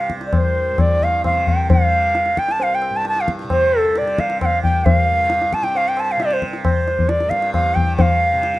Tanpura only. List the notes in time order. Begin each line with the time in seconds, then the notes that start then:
Already playing: C2 G2 C3
0.15 C2
0.71 G2
1.26 C3
1.80 C3
2.35 C2
2.90 G2
3.44 C3
4.01 C3
4.54 C2
5.09 G2
5.62 C3
6.17 C3
6.71 C2
7.26 G2
7.79 C3
8.33 C3